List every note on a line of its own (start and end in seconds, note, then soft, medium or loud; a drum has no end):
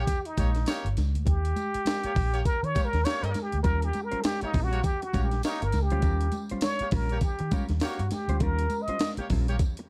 0.00 0.28 G4 medium
0.07 kick medium
0.07 closed hi-hat loud
0.07 tambourine medium
0.07 muted conga soft
0.07 low conga medium
0.25 0.85 D#4 medium
0.25 closed hi-hat medium
0.37 0.63 A#1 medium
0.37 0.49 A#3 medium
0.37 0.49 G4 medium
0.37 0.49 C#5 loud
0.37 kick medium
0.37 closed hi-hat medium
0.37 tambourine medium
0.37 muted conga soft
0.37 high conga medium
0.55 snare soft
0.55 closed hi-hat soft
0.66 0.87 A#3 loud
0.66 0.87 G4 medium
0.66 0.87 C#5 loud
0.66 snare loud
0.66 closed hi-hat medium
0.66 tambourine loud
0.66 muted conga soft
0.84 0.95 G1 medium
0.84 closed hi-hat soft
0.97 1.12 C#2 medium
0.97 snare soft
0.97 closed hi-hat medium
0.97 tambourine medium
0.97 high conga medium
1.14 1.25 D2 medium
1.14 closed hi-hat medium
1.26 1.52 D#2 loud
1.26 2.47 G4 loud
1.26 kick loud
1.26 closed hi-hat medium
1.26 low conga medium
1.45 closed hi-hat medium
1.56 closed hi-hat medium
1.56 tambourine medium
1.56 muted conga soft
1.56 high conga medium
1.74 muted fingered electric bass stroke soft
1.74 closed hi-hat medium
1.85 snare loud
1.85 closed hi-hat medium
1.85 tambourine medium
1.85 high conga medium
2.03 2.12 A#3 medium
2.03 2.12 G4 medium
2.03 2.12 C#5 medium
2.03 muted fingered electric bass stroke soft
2.03 closed hi-hat medium
2.15 2.41 A#1 medium
2.15 kick loud
2.15 open hi-hat medium
2.15 tambourine soft
2.15 muted conga soft
2.15 low conga medium
2.33 2.41 A#3 medium
2.33 2.41 G4 medium
2.33 2.41 C#5 loud
2.33 closed hi-hat medium
2.45 2.66 A#4 loud
2.45 kick medium
2.45 closed hi-hat medium
2.45 tambourine medium
2.45 low conga medium
2.63 2.73 D#3 medium
2.63 2.86 C#5 loud
2.63 closed hi-hat soft
2.75 2.87 A#3 medium
2.75 2.87 G4 medium
2.75 2.87 C#5 medium
2.75 kick loud
2.75 closed hi-hat medium
2.75 tambourine medium
2.75 high conga medium
2.85 3.06 A#4 loud
2.93 3.04 D#2 medium
2.93 snare soft
2.93 closed hi-hat soft
3.05 3.31 A#3 loud
3.05 3.31 G4 loud
3.05 3.24 C#5 loud
3.05 3.30 C#5 loud
3.05 muted fingered electric bass stroke soft
3.05 snare loud
3.05 closed hi-hat medium
3.05 tambourine loud
3.23 3.33 G2 medium
3.23 3.44 A#4 medium
3.23 closed hi-hat medium
3.34 snare soft
3.34 closed hi-hat medium
3.34 tambourine medium
3.34 muted conga soft
3.34 high conga medium
3.42 3.62 G4 medium
3.52 3.63 D2 medium
3.52 closed hi-hat medium
3.63 3.90 D#2 loud
3.63 3.88 G3 medium
3.63 3.88 C#4 medium
3.63 3.88 F4 medium
3.63 3.86 A#4 loud
3.63 3.89 A#4 medium
3.63 kick loud
3.63 closed hi-hat medium
3.63 tambourine soft
3.63 muted conga soft
3.63 low conga medium
3.82 4.06 G4 loud
3.82 closed hi-hat medium
3.93 muted clean electric guitar stroke soft
3.93 closed hi-hat medium
3.93 tambourine medium
3.93 high conga medium
4.04 4.25 A#4 loud
4.11 4.23 G3 medium
4.11 4.23 C#4 medium
4.11 4.23 F4 medium
4.11 4.24 C5 medium
4.11 muted fingered electric bass stroke soft
4.11 closed hi-hat medium
4.24 4.45 G4 loud
4.24 muted clean electric guitar stroke soft
4.24 snare loud
4.24 closed hi-hat loud
4.24 tambourine medium
4.24 muted conga soft
4.24 high conga medium
4.41 4.50 A#3 medium
4.41 4.65 D#4 medium
4.41 4.50 G4 medium
4.41 4.50 C#5 medium
4.41 muted fingered electric bass stroke medium
4.41 muted clean electric guitar stroke soft
4.41 closed hi-hat medium
4.53 4.80 A#1 medium
4.53 4.77 G3 medium
4.53 4.72 C#4 medium
4.53 4.71 F4 medium
4.53 4.71 A#4 loud
4.53 kick medium
4.53 open hi-hat medium
4.53 tambourine soft
4.53 muted conga soft
4.53 low conga medium
4.64 4.86 F#4 loud
4.72 4.80 A#3 loud
4.72 4.80 G4 medium
4.72 4.80 C#5 loud
4.72 muted clean electric guitar stroke soft
4.72 closed hi-hat medium
4.83 5.05 G4 medium
4.83 muted clean electric guitar stroke soft
4.83 kick medium
4.83 closed hi-hat loud
4.83 tambourine soft
4.83 muted conga soft
4.83 low conga medium
5.02 5.25 F#4 medium
5.02 muted clean electric guitar stroke soft
5.02 closed hi-hat soft
5.13 5.40 A#1 medium
5.13 5.37 G3 medium
5.13 5.25 A#3 medium
5.13 5.32 C#4 medium
5.13 5.31 F4 medium
5.13 5.25 G4 medium
5.13 5.31 A#4 medium
5.13 5.25 C#5 medium
5.13 kick medium
5.13 closed hi-hat medium
5.13 tambourine medium
5.13 high conga medium
5.24 5.44 G4 medium
5.31 muted clean electric guitar stroke soft
5.31 snare soft
5.31 closed hi-hat medium
5.43 5.64 A#3 loud
5.43 5.65 D#4 medium
5.43 5.63 G4 loud
5.43 5.63 C#5 loud
5.43 muted clean electric guitar stroke soft
5.43 snare medium
5.43 closed hi-hat medium
5.43 tambourine loud
5.62 5.72 G1 medium
5.62 5.84 A#4 medium
5.62 muted clean electric guitar stroke soft
5.62 closed hi-hat medium
5.72 5.89 C#2 loud
5.72 snare soft
5.72 closed hi-hat medium
5.72 tambourine medium
5.72 high conga medium
5.82 6.42 G4 medium
5.90 6.02 D2 medium
5.90 6.02 G3 medium
5.90 6.02 C#4 medium
5.90 6.03 F4 medium
5.90 6.04 C5 medium
5.90 closed hi-hat medium
6.02 6.28 D#2 loud
6.02 6.26 G3 medium
6.02 6.27 C#4 loud
6.02 6.27 F4 medium
6.02 6.27 A#4 medium
6.02 kick loud
6.02 closed hi-hat medium
6.02 tambourine soft
6.02 muted conga soft
6.02 low conga medium
6.21 closed hi-hat medium
6.32 muted clean electric guitar stroke soft
6.32 closed hi-hat medium
6.32 tambourine medium
6.32 muted conga soft
6.32 high conga medium
6.49 6.63 G3 medium
6.49 6.63 C#4 medium
6.49 6.63 F4 medium
6.49 6.65 C5 medium
6.49 muted fingered electric bass stroke soft
6.49 closed hi-hat medium
6.61 6.95 C#5 loud
6.61 muted clean electric guitar stroke medium
6.61 snare loud
6.61 closed hi-hat loud
6.61 tambourine medium
6.61 muted conga soft
6.61 high conga medium
6.79 6.89 A#3 medium
6.79 6.89 G4 medium
6.79 6.88 C#5 medium
6.79 muted fingered electric bass stroke soft
6.79 muted clean electric guitar stroke soft
6.79 closed hi-hat medium
6.91 7.18 A#1 medium
6.91 7.16 G3 medium
6.91 7.11 C#4 medium
6.91 7.10 F4 loud
6.91 7.24 A#4 medium
6.91 7.09 A#4 medium
6.91 kick loud
6.91 open hi-hat medium
6.91 tambourine soft
6.91 low conga medium
7.09 7.18 A#3 medium
7.09 7.18 G4 medium
7.09 7.18 C#5 loud
7.09 muted clean electric guitar stroke medium
7.09 closed hi-hat medium
7.21 7.52 G4 medium
7.21 muted clean electric guitar stroke medium
7.21 kick medium
7.21 closed hi-hat medium
7.21 tambourine medium
7.21 low conga medium
7.39 7.50 D#3 medium
7.39 muted clean electric guitar stroke medium
7.39 closed hi-hat medium
7.51 7.75 G3 medium
7.51 7.64 A#3 medium
7.51 7.69 C#4 medium
7.51 7.68 F4 medium
7.51 7.64 G4 medium
7.51 7.68 A#4 medium
7.51 7.64 C#5 medium
7.51 kick medium
7.51 closed hi-hat medium
7.51 tambourine medium
7.51 high conga medium
7.69 7.80 D#2 medium
7.69 muted clean electric guitar stroke soft
7.69 snare soft
7.69 closed hi-hat soft
7.80 8.01 A#3 loud
7.80 8.14 F#4 medium
7.80 8.01 G4 medium
7.80 8.01 C#5 loud
7.80 muted clean electric guitar stroke soft
7.80 muted fingered electric bass stroke soft
7.80 snare loud
7.80 closed hi-hat medium
7.80 tambourine loud
7.80 muted conga soft
7.99 8.10 G2 medium
7.99 muted clean electric guitar stroke soft
7.99 closed hi-hat medium
8.11 8.43 G4 medium
8.11 snare soft
8.11 closed hi-hat medium
8.11 tambourine medium
8.11 high conga medium
8.28 8.39 D2 medium
8.28 8.41 G3 medium
8.28 8.41 C#4 medium
8.28 8.42 F4 medium
8.28 8.43 C5 medium
8.28 closed hi-hat medium
8.40 8.66 D#2 loud
8.40 8.65 G3 loud
8.40 8.65 C#4 medium
8.40 8.65 F4 loud
8.40 8.84 A#4 loud
8.40 8.66 A#4 loud
8.40 kick loud
8.40 closed hi-hat medium
8.40 muted conga soft
8.40 low conga loud
8.59 closed hi-hat medium
8.70 muted clean electric guitar stroke soft
8.70 closed hi-hat medium
8.70 tambourine soft
8.70 muted conga soft
8.70 high conga medium
8.82 9.11 D#5 medium
8.88 8.99 G3 soft
8.88 8.99 C#4 medium
8.88 8.99 F4 medium
8.88 9.01 C5 medium
8.88 muted fingered electric bass stroke soft
8.88 closed hi-hat medium
8.99 muted clean electric guitar stroke soft
8.99 snare loud
8.99 closed hi-hat loud
8.99 tambourine medium
8.99 high conga medium
9.17 9.26 A#3 medium
9.17 9.26 G4 medium
9.17 9.26 C#5 medium
9.17 muted fingered electric bass stroke soft
9.17 muted clean electric guitar stroke medium
9.17 closed hi-hat medium
9.30 9.56 A#1 medium
9.30 9.54 G3 medium
9.30 9.49 C#4 medium
9.30 9.48 F4 medium
9.30 9.48 A#4 medium
9.30 kick medium
9.30 open hi-hat medium
9.30 tambourine soft
9.30 muted conga soft
9.30 low conga medium
9.48 9.56 A#3 medium
9.48 9.56 G4 medium
9.48 9.56 C#5 loud
9.48 muted clean electric guitar stroke soft
9.48 closed hi-hat medium
9.59 muted clean electric guitar stroke soft
9.59 kick loud
9.59 closed hi-hat medium
9.59 tambourine medium
9.59 muted conga soft
9.59 low conga medium
9.77 muted clean electric guitar stroke soft
9.77 closed hi-hat medium